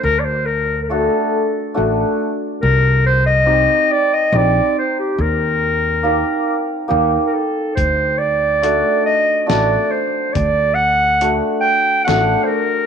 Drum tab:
HH |------|------|------|x-x-x-|
SD |------|------|------|----o-|
BD |------|------|------|o-----|

HH |x-x-x-|
SD |----o-|
BD |o-----|